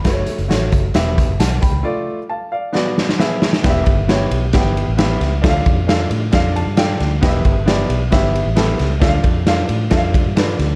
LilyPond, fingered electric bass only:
\new Staff \with { instrumentName = "Fingered electric bass" } { \clef bass \time 4/4 \key e \dorian \tempo 4 = 134 fis,,8 r16 fis,,16 a,,8 fis,,8 e,,8. fis,,16 b,,8 cis,8 | r1 | e,,8 g,,4 b,,8 g,,8. a,,8. cis,8 | d,8 f,4 a,8 f,8. g,8. d,8 |
e,,8 g,,4 b,,8 g,,8. a,,8. cis,8 | d,8 f,4 a,8 f,8. g,8. d,8 | }